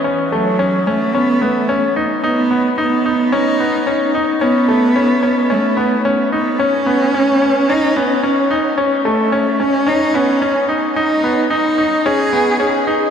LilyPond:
<<
  \new Staff \with { instrumentName = "Grand piano" } { \time 4/4 \key fis \dorian \tempo 4 = 110 cis'8 a8 cis'8 cis'8 cis'8 b8 cis'8 dis'8 | dis'8 b8 dis'8 dis'8 cis'8 b8 cis'8 dis'8 | cis'8 a8 cis'8 cis'8 cis'8 b8 cis'8 dis'8 | cis'8 b8 cis'8 cis'8 cis'8 b8 cis'8 dis'8 |
cis'8 a8 cis'8 cis'8 cis'8 b8 cis'8 dis'8 | dis'8 b8 dis'8 dis'8 cis'8 b8 cis'8 dis'8 | }
  \new Staff \with { instrumentName = "Cello" } { \time 4/4 \key fis \dorian r8 fis4 a8 b8 a4 r8 | b4 b4 dis'4. r8 | b2 a4 r8 b8 | cis'2 dis'8 cis'4 r8 |
r8 a4 cis'8 dis'8 cis'4 r8 | dis'4 dis'4 gis'4. r8 | }
>>